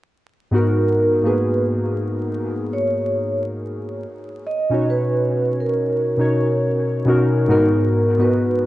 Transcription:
0.51 G#2 B3 D#4 F#4
0.55 A#4
1.22 G#2 A#3 D#4 F#4
1.26 B3 G#4 B4
2.73 C#5
4.47 D#5
4.70 B2 C#4 D#4 F#4
4.74 C#5
4.90 B4
5.60 A#4
6.17 B2 C#4 D#4 F#4
6.21 C#5
7.05 B2 C#4 D#4 F#4
7.09 A#4
7.48 G#2 B3 D#4 F#4 A#4
8.18 G#2 B3 D#4 F#4 B4
8.22 B4

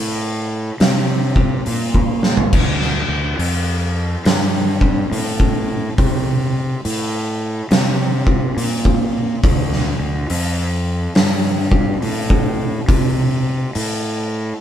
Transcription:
Already playing: A2
0.80 C3, snare, open hi-hat
1.36 kick
1.66 A#2, open hi-hat
1.95 kick
2.23 snare
2.37 floor tom
2.53 D2, kick, crash
2.82 snare
3.08 D2
3.39 F2, open hi-hat
4.25 G2, snare, open hi-hat
4.81 kick
5.12 A2, open hi-hat
5.40 kick
5.98 C3, kick, open hi-hat
6.85 A2, open hi-hat
7.71 C3, snare, open hi-hat
8.27 kick
8.57 A#2, open hi-hat
8.85 kick
9.43 D2, kick, open hi-hat
9.73 snare
9.99 D2
10.30 F2, open hi-hat
11.15 G2, snare, open hi-hat
11.72 kick
12.02 A2, open hi-hat
12.30 kick
12.88 C3, kick, open hi-hat
13.75 A2, open hi-hat

